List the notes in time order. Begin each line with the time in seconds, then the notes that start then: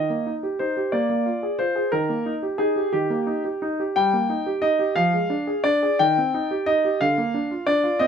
Already playing: D#5
0.10 A#3
0.27 D#4
0.43 G4
0.59 D#4 C5
0.77 G4
0.92 A#3 D5
1.10 A#3
1.26 F4
1.43 G#4
1.59 F4 C5
1.76 G#4
1.92 D#3 A#4
2.09 A#3
2.26 D#4
2.43 G4
2.58 D#4 G#4
2.76 G4
2.93 D#3 G4
3.10 A#3
3.27 D#4
3.45 G4
3.62 D#4
3.80 G4
3.96 G3 G5
4.13 A#3
4.30 D#4
4.46 G4
4.62 D#4 D#5
4.79 G4
4.96 F3 F5
5.13 G#3
5.30 D4
5.47 G#4
5.64 D4 D5
5.83 G#4
5.99 D#3 G5
6.18 C4
6.34 D#4
6.51 G4
6.66 D#4 D#5
6.85 G4
7.01 D3 F5
7.18 A#3
7.34 D4
7.51 F4
7.67 D4 D5
7.84 F4
7.99 C4 D#5